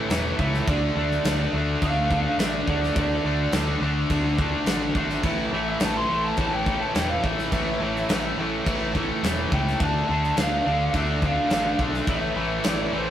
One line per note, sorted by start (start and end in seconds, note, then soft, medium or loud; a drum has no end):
0.00 0.10 A2 medium
0.00 0.10 E3 medium
0.00 0.11 A3 loud
0.09 0.31 E1 medium
0.09 0.38 A2 medium
0.09 0.39 E3 medium
0.09 0.40 A3 medium
0.09 snare loud
0.09 crash medium
0.39 0.60 C#2 medium
0.39 0.66 A2 medium
0.39 0.67 E3 medium
0.39 0.69 A3 medium
0.39 0.68 E5 loud
0.39 kick medium
0.54 snare soft
0.67 0.89 D2 loud
0.67 0.97 D3 medium
0.67 0.97 A3 loud
0.67 0.97 D4 loud
0.67 1.50 D5 loud
0.67 kick loud
0.67 crash medium
0.95 1.17 D2 medium
0.95 1.25 D3 medium
0.95 1.26 A3 medium
0.95 1.26 D4 loud
1.11 snare soft
1.24 1.45 D2 loud
1.24 1.54 D3 medium
1.24 1.55 A3 medium
1.24 1.56 D4 loud
1.24 snare loud
1.24 crash medium
1.53 1.74 D2 medium
1.53 1.83 D3 medium
1.53 1.84 A3 loud
1.53 1.84 D4 loud
1.82 2.24 D2 loud
1.82 2.12 D3 medium
1.82 2.13 A3 loud
1.82 2.13 D4 loud
1.82 2.24 F5 loud
1.82 kick medium
1.82 crash medium
2.11 2.41 D3 loud
2.11 2.41 A3 loud
2.11 2.41 D4 loud
2.11 kick medium
2.25 2.38 F5 medium
2.38 2.60 A1 medium
2.38 2.68 D3 medium
2.38 2.69 A3 loud
2.38 2.65 E5 loud
2.38 snare loud
2.38 crash medium
2.42 2.69 D4 loud
2.67 2.89 D2 medium
2.67 2.96 D3 medium
2.67 2.97 A3 medium
2.67 2.97 D4 medium
2.67 2.94 D5 medium
2.67 kick medium
2.83 snare soft
2.96 3.17 D2 loud
2.96 3.24 D3 medium
2.96 3.26 A3 medium
2.96 3.26 D4 loud
2.96 3.50 D5 medium
2.96 kick loud
2.96 crash medium
3.24 3.45 D2 medium
3.24 3.54 D3 medium
3.24 3.55 A3 loud
3.24 3.55 D4 medium
3.52 3.74 D2 medium
3.52 3.81 D3 medium
3.52 3.83 A3 medium
3.52 3.82 D4 medium
3.52 snare loud
3.52 crash medium
3.81 4.02 D2 medium
3.81 4.11 D3 medium
3.81 4.12 A3 loud
3.81 4.11 D4 loud
4.10 4.52 D2 medium
4.10 4.39 D3 medium
4.10 4.41 A3 medium
4.10 4.40 D4 loud
4.10 kick medium
4.10 crash medium
4.38 4.67 D3 medium
4.38 4.68 A3 loud
4.38 4.67 D4 loud
4.38 kick medium
4.66 4.89 A1 loud
4.66 4.95 D3 medium
4.66 4.97 A3 medium
4.66 4.96 D4 medium
4.66 snare loud
4.66 crash medium
4.95 5.16 G#1 medium
4.95 5.23 D3 medium
4.95 5.25 A3 medium
4.95 5.24 D4 medium
4.95 kick medium
5.10 snare soft
5.23 5.45 A1 medium
5.23 5.52 A2 loud
5.23 5.52 E3 loud
5.23 5.53 A3 loud
5.23 kick loud
5.23 crash medium
5.52 5.74 A1 medium
5.52 5.80 A2 medium
5.52 5.80 E3 medium
5.52 5.81 A3 loud
5.52 5.69 E5 medium
5.70 5.83 E5 medium
5.80 6.03 A1 loud
5.80 6.09 A2 medium
5.80 6.09 E3 medium
5.80 6.10 A3 medium
5.80 5.95 A5 medium
5.80 snare loud
5.80 crash medium
5.97 6.26 C6 loud
6.09 6.31 A1 medium
6.09 6.37 A2 loud
6.09 6.38 E3 loud
6.09 6.39 A3 loud
6.25 6.38 A5 loud
6.37 6.80 A1 loud
6.37 6.65 A2 medium
6.37 6.66 E3 medium
6.37 6.67 A3 loud
6.37 6.53 A5 loud
6.37 kick medium
6.37 crash medium
6.53 6.80 G5 medium
6.66 6.94 A2 loud
6.66 6.94 E3 loud
6.66 6.96 A3 loud
6.66 kick medium
6.81 6.94 A5 medium
6.95 7.17 E1 medium
6.95 7.22 A2 medium
6.95 7.23 E3 loud
6.95 7.24 A3 loud
6.95 7.09 G5 medium
6.95 snare loud
6.95 crash medium
7.08 7.24 F5 medium
7.23 7.45 A1 medium
7.23 7.52 A2 medium
7.23 7.53 E3 medium
7.23 7.54 A3 medium
7.23 8.38 E5 medium
7.23 kick medium
7.38 snare soft
7.52 7.73 A1 loud
7.52 7.81 A2 loud
7.52 7.81 E3 loud
7.52 7.83 A3 medium
7.52 kick loud
7.52 crash medium
7.80 8.02 A1 loud
7.80 8.08 A2 medium
7.80 8.09 E3 medium
7.80 8.10 A3 loud
7.96 snare soft
8.09 8.31 A1 loud
8.09 8.38 A2 loud
8.09 8.39 E3 medium
8.09 8.40 A3 loud
8.09 snare loud
8.09 crash medium
8.37 8.59 A1 medium
8.37 8.66 A2 loud
8.37 8.67 E3 loud
8.37 8.68 A3 loud
8.66 9.09 A1 loud
8.66 8.95 A2 medium
8.66 8.95 E3 loud
8.66 8.96 A3 loud
8.66 kick medium
8.66 crash medium
8.95 9.23 A2 medium
8.95 9.23 E3 loud
8.95 9.25 A3 loud
8.95 kick medium
9.23 9.44 E1 medium
9.23 9.51 A2 medium
9.23 9.52 E3 loud
9.23 9.53 A3 loud
9.23 snare loud
9.23 crash medium
9.52 9.73 C#2 loud
9.52 9.79 A2 medium
9.52 9.79 E3 medium
9.52 9.82 A3 medium
9.52 9.79 G5 loud
9.52 kick medium
9.68 snare soft
9.80 10.01 D2 loud
9.80 10.08 D3 loud
9.80 10.09 A3 loud
9.80 10.09 D4 loud
9.80 10.40 A5 loud
9.80 kick loud
9.80 crash medium
10.09 10.30 D2 medium
10.09 10.35 D3 loud
10.09 10.36 A3 loud
10.09 10.36 D4 medium
10.24 snare soft
10.36 10.59 D2 loud
10.36 10.64 D3 medium
10.36 10.65 A3 loud
10.36 10.66 D4 loud
10.36 10.91 F5 medium
10.36 snare loud
10.36 crash medium
10.65 10.87 D2 medium
10.65 10.93 D3 medium
10.65 10.94 A3 medium
10.65 10.94 D4 loud
10.93 11.36 D2 loud
10.93 11.22 D3 medium
10.93 11.23 A3 loud
10.93 11.22 D4 medium
10.93 11.25 E5 medium
10.93 kick medium
10.93 crash medium
11.22 11.50 D3 loud
11.22 11.51 A3 medium
11.22 11.51 D4 loud
11.22 11.77 F5 medium
11.22 kick medium
11.50 11.72 A1 medium
11.50 11.78 D3 medium
11.50 11.79 A3 medium
11.50 11.78 D4 loud
11.50 snare loud
11.50 crash medium
11.79 12.00 B1 medium
11.79 12.06 D3 medium
11.79 12.08 A3 loud
11.79 12.07 D4 medium
11.79 kick medium
11.94 snare soft
12.07 12.29 A1 medium
12.07 12.35 A2 loud
12.07 12.36 E3 medium
12.07 12.36 A3 loud
12.07 12.68 E5 loud
12.07 kick loud
12.07 crash medium
12.36 12.57 A1 medium
12.36 12.64 A2 medium
12.36 12.64 E3 medium
12.36 12.65 A3 loud
12.64 12.86 A1 medium
12.64 12.92 A2 medium
12.64 12.93 E3 loud
12.64 12.93 A3 medium
12.64 snare loud
12.64 crash medium
12.68 12.96 D5 loud
12.93 13.10 A1 medium
12.93 13.10 A2 medium
12.93 13.10 E3 loud
12.93 13.10 A3 loud
12.93 13.10 C5 medium